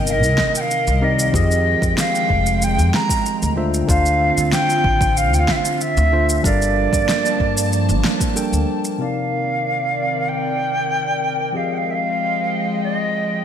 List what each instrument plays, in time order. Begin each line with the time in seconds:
Already playing: upright bass G1, tine electric piano C3 C4 D#4 A#4 D#5, analog synth pad D#3 A#4 D#5
0.07 flute F5, shaker
0.12 flute D#5
0.23 upright bass C2, shaker
0.38 kick, snare
0.55 flute G5, shaker
0.60 flute F5
0.71 shaker
0.87 upright bass C2, shaker
1.01 tine electric piano C3 C4 D#4 A#4 D5, flute D#5
1.19 shaker
1.33 upright bass F2, tine electric piano F3 C4 G4 G#4 D#5, analog synth pad G#3 G5, flute D#5, kick, shaker
1.51 shaker
1.82 upright bass F2, kick, shaker
1.98 flute F5, snare, shaker
2.15 shaker
2.29 upright bass F1, kick
2.46 shaker
2.62 flute G5, shaker
2.78 upright bass F2, shaker
2.94 flute A#5, snare
3.09 kick, shaker
3.26 shaker
3.42 upright bass D2, shaker
3.56 tine electric piano D3 D4 F4 C5 E5, analog synth pad C4 F4
3.74 shaker
3.87 upright bass D2, tine electric piano D3 D4 F4 C5 F5, flute F5, kick, shaker
4.06 shaker
4.37 upright bass D2, shaker
4.52 flute G5, snare, shaker
4.70 shaker
4.84 upright bass A1, kick
5.01 kick, shaker
5.17 flute F5, shaker
5.33 upright bass D2, flute G5, shaker
5.39 flute F5
5.48 flute E5, kick, snare
5.56 flute F5
5.65 shaker
5.74 flute F5
5.81 flute E5, shaker
5.97 upright bass D2, shaker
6.12 tine electric piano D3 D4 F4 C5 E5
6.29 shaker
6.43 upright bass G1, analog synth pad F3 A#3 A5, tine electric piano G3 D4 A4 A#4 F5, flute D5, kick, shaker
6.62 shaker
6.93 upright bass G1, kick, shaker
7.09 snare, shaker
7.25 shaker
7.40 upright bass G2, kick
7.57 shaker
7.73 shaker
7.89 upright bass G1, shaker
8.04 snare
8.20 kick, shaker
8.35 tine electric piano G3 D4 A4 A#4 G5, shaker
8.52 upright bass D2, shaker
8.85 shaker
8.98 tine electric piano C3 C4 D#4 A#4 D5, analog synth pad D#3 C4 A#4 D5, flute F5
10.28 flute G5
11.53 tine electric piano F3 C4 G4 G#4 D#5, analog synth pad F3 G#3 D#5 G5, flute F5
11.74 flute F5 G5
11.91 flute E5 F5
12.84 flute D#5